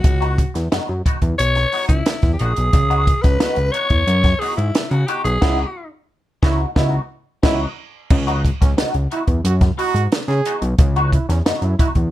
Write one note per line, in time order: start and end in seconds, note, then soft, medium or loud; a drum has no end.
0.00 0.51 F#4 medium
0.00 muted clean electric guitar stroke soft
0.04 0.44 C#2 loud
0.04 kick loud
0.04 closed hi-hat medium
0.21 0.35 E3 medium
0.21 0.35 B3 medium
0.21 0.35 D#4 medium
0.21 0.34 F#4 medium
0.21 closed hi-hat soft
0.38 muted clean electric guitar stroke soft
0.38 kick medium
0.38 closed hi-hat medium
0.54 0.69 E2 medium
0.54 muted clean electric guitar stroke soft
0.54 snare soft
0.54 closed hi-hat medium
0.72 0.79 F#2 soft
0.72 0.85 E3 medium
0.72 0.85 B3 medium
0.72 0.86 D#4 medium
0.72 0.86 F#4 medium
0.72 snare loud
0.72 closed hi-hat loud
0.89 1.02 F#2 medium
0.89 muted clean electric guitar stroke soft
1.06 1.16 E3 medium
1.06 1.16 B3 medium
1.06 1.16 D#4 medium
1.06 1.17 F#4 medium
1.06 kick loud
1.06 closed hi-hat medium
1.22 1.35 E2 medium
1.22 muted clean electric guitar stroke soft
1.22 kick medium
1.22 closed hi-hat soft
1.39 1.66 B1 loud
1.39 1.86 C#5 loud
1.39 closed hi-hat loud
1.55 muted clean electric guitar stroke medium
1.55 snare soft
1.55 closed hi-hat soft
1.72 1.86 E3 medium
1.72 1.86 B3 medium
1.72 1.86 D#4 medium
1.72 1.87 F#4 medium
1.72 open hi-hat medium
1.88 2.03 C#2 medium
1.88 2.29 E4 medium
1.88 muted clean electric guitar stroke soft
1.88 kick medium
1.88 closed hi-hat medium
2.06 muted clean electric guitar stroke soft
2.06 snare loud
2.06 closed hi-hat loud
2.22 2.36 E2 medium
2.22 kick medium
2.22 snare soft
2.22 closed hi-hat soft
2.33 2.40 G4 medium
2.39 2.54 A#1 loud
2.39 2.50 E3 medium
2.39 2.51 B3 medium
2.39 2.51 D#4 medium
2.39 2.51 F#4 medium
2.39 3.23 G#4 loud
2.39 closed hi-hat medium
2.56 2.71 B1 medium
2.56 muted clean electric guitar stroke soft
2.56 closed hi-hat medium
2.73 3.14 C#2 loud
2.73 muted clean electric guitar stroke soft
2.73 kick loud
2.73 closed hi-hat medium
2.90 3.04 E3 medium
2.90 3.04 B3 medium
2.90 3.04 D#4 medium
2.90 3.04 F#4 medium
2.90 closed hi-hat soft
3.06 muted clean electric guitar stroke soft
3.06 kick medium
3.06 closed hi-hat medium
3.22 3.38 C#2 medium
3.22 3.73 B4 loud
3.22 muted clean electric guitar stroke soft
3.22 kick loud
3.22 snare soft
3.22 closed hi-hat medium
3.40 3.48 C#2 soft
3.40 3.54 E3 medium
3.40 3.54 B3 medium
3.40 3.54 D#4 medium
3.40 3.55 F#4 loud
3.40 snare loud
3.40 closed hi-hat loud
3.56 3.71 C#2 medium
3.56 muted clean electric guitar stroke soft
3.56 closed hi-hat soft
3.72 3.84 E3 medium
3.72 3.85 B3 medium
3.72 3.85 D#4 medium
3.72 3.85 F#4 medium
3.72 4.41 C#5 loud
3.72 closed hi-hat medium
3.90 4.04 E2 medium
3.90 muted clean electric guitar stroke soft
3.90 kick medium
3.90 closed hi-hat soft
4.07 4.34 F#2 loud
4.07 closed hi-hat medium
4.24 muted clean electric guitar stroke medium
4.24 kick medium
4.24 snare soft
4.24 closed hi-hat soft
4.40 4.55 E3 medium
4.40 4.55 B3 loud
4.40 4.55 D#4 medium
4.40 4.55 F#4 medium
4.40 4.56 G#4 medium
4.40 open hi-hat medium
4.57 4.71 G#2 medium
4.57 4.92 E4 medium
4.57 muted clean electric guitar stroke soft
4.57 closed hi-hat medium
4.74 muted clean electric guitar stroke soft
4.74 snare loud
4.74 closed hi-hat medium
4.90 5.05 C#3 loud
4.90 5.09 F#4 medium
4.90 muted clean electric guitar stroke soft
4.90 closed hi-hat soft
5.07 5.22 E3 medium
5.07 5.22 B3 medium
5.07 5.22 D#4 loud
5.07 5.22 F#4 loud
5.07 5.24 G4 medium
5.07 closed hi-hat medium
5.24 5.38 B1 medium
5.24 5.88 G#4 medium
5.24 closed hi-hat medium
5.41 5.65 C#2 loud
5.41 5.65 E3 loud
5.41 5.65 B3 loud
5.41 5.65 D#4 loud
5.41 5.59 E4 loud
5.41 5.65 F#4 loud
5.41 kick loud
5.41 snare loud
5.41 crash medium
6.42 6.66 C#2 loud
6.42 6.65 E3 loud
6.42 6.66 B3 medium
6.42 6.66 D#4 loud
6.42 6.61 E4 loud
6.42 6.66 F#4 loud
6.42 kick loud
6.42 snare loud
6.75 6.99 C#2 medium
6.75 6.99 E3 medium
6.75 6.99 B3 loud
6.75 6.99 D#4 loud
6.75 6.94 E4 loud
6.75 6.99 F#4 loud
6.75 kick loud
6.75 snare loud
7.43 7.66 C#2 loud
7.43 7.66 E3 loud
7.43 7.66 B3 loud
7.43 7.66 D#4 loud
7.43 7.61 E4 loud
7.43 7.67 F#4 loud
7.43 kick loud
7.43 snare loud
7.43 crash medium
8.10 8.51 C#2 loud
8.10 muted clean electric guitar stroke soft
8.10 kick loud
8.10 crash loud
8.27 8.41 E3 medium
8.27 8.41 B3 medium
8.27 8.41 D#4 medium
8.27 8.41 F#4 medium
8.27 closed hi-hat soft
8.44 muted clean electric guitar stroke soft
8.44 kick medium
8.44 closed hi-hat medium
8.61 8.75 C#2 medium
8.61 8.71 C#4 medium
8.61 muted clean electric guitar stroke soft
8.61 kick loud
8.61 snare soft
8.61 closed hi-hat medium
8.77 8.84 C#2 soft
8.77 8.91 E3 medium
8.77 8.91 B3 loud
8.77 8.91 D#4 loud
8.77 8.92 F#4 loud
8.77 snare loud
8.77 closed hi-hat loud
8.94 9.08 C#2 medium
8.94 closed hi-hat soft
9.11 9.22 E3 medium
9.11 9.22 B3 medium
9.11 9.22 D#4 medium
9.11 9.22 E4 loud
9.11 9.22 F#4 medium
9.11 closed hi-hat medium
9.27 9.41 E2 medium
9.27 muted clean electric guitar stroke medium
9.27 kick medium
9.27 closed hi-hat soft
9.44 9.71 F#2 loud
9.44 9.56 F#4 loud
9.44 closed hi-hat loud
9.61 muted clean electric guitar stroke medium
9.61 kick loud
9.61 snare soft
9.61 closed hi-hat soft
9.78 9.91 E3 medium
9.78 9.92 B3 medium
9.78 9.92 D#4 loud
9.78 10.05 F#4 loud
9.78 9.92 F#4 loud
9.78 open hi-hat medium
9.94 10.08 G#2 medium
9.94 closed hi-hat medium
10.12 muted clean electric guitar stroke soft
10.12 snare loud
10.12 closed hi-hat medium
10.28 10.41 C#3 medium
10.28 10.55 G#4 loud
10.28 muted clean electric guitar stroke medium
10.28 snare soft
10.28 closed hi-hat soft
10.45 10.59 E3 loud
10.45 10.59 B3 medium
10.45 10.59 D#4 loud
10.45 10.60 F#4 loud
10.45 closed hi-hat medium
10.62 10.75 B1 loud
10.62 muted clean electric guitar stroke soft
10.62 closed hi-hat medium
10.78 11.18 C#2 loud
10.78 muted clean electric guitar stroke soft
10.78 kick loud
10.78 closed hi-hat medium
10.96 11.10 E3 medium
10.96 11.10 B3 medium
10.96 11.09 D#4 medium
10.96 11.09 F#4 medium
10.96 closed hi-hat soft
11.12 11.25 E4 medium
11.12 kick medium
11.12 closed hi-hat medium
11.29 11.42 E2 medium
11.29 11.39 C#4 medium
11.29 muted clean electric guitar stroke soft
11.29 snare soft
11.29 closed hi-hat medium
11.46 11.52 F#2 soft
11.46 11.59 E3 medium
11.46 11.59 B3 medium
11.46 11.59 D#4 loud
11.46 11.60 F#4 medium
11.46 snare loud
11.46 closed hi-hat loud
11.62 11.75 F#2 medium
11.62 11.76 E4 medium
11.62 muted clean electric guitar stroke soft
11.62 closed hi-hat soft
11.79 11.89 E3 medium
11.79 11.90 B3 medium
11.79 11.90 D#4 medium
11.79 11.89 E4 loud
11.79 11.90 F#4 medium
11.79 kick loud
11.79 closed hi-hat medium
11.95 12.09 E2 medium
11.95 muted clean electric guitar stroke soft
11.95 kick medium
11.95 closed hi-hat soft